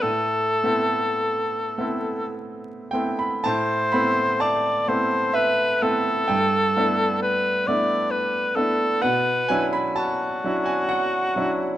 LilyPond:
<<
  \new Staff \with { instrumentName = "Cor anglais" } { \time 3/4 \key a \minor \tempo 4 = 64 a'2 r4 | c''4 d''8 c''8 b'8 a'8~ | a'4 b'8 d''8 b'8 a'8 | b'8 r8 fis'2 | }
  \new Staff \with { instrumentName = "Grand piano" } { \time 3/4 \key a \minor << { r2 r8 g''16 b''16 | a''8 b''8 a''4 e''4 | g''2 r4 | fis''8 gis''16 b''16 a''8. gis''16 fis''4 | } \\ { a,8 <a b c' e'>4 <a b c' e'>4 <a b c' e'>8 | a,8 <a b c' e'>4 <a b c' e'>4 <a b c' e'>8 | g,8 <a b d' e'>4 <a b d' e'>4 <a b d' e'>8 | b,8 <fis cis' d' e'>4 <fis cis' d' e'>4 <fis cis' d' e'>8 | } >> }
>>